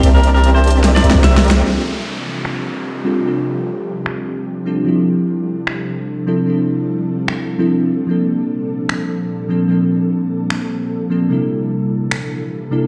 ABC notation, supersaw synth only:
X:1
M:4/4
L:1/16
Q:"Swing 16ths" 1/4=149
K:F
V:1 name="Supersaw synth"
[CGBdea]8- [CGBdea]2 [CGBdeb] [CGBdeb]4- [CGBdeb] | z16 | z16 | z16 |
z16 | z16 | z16 | z16 |]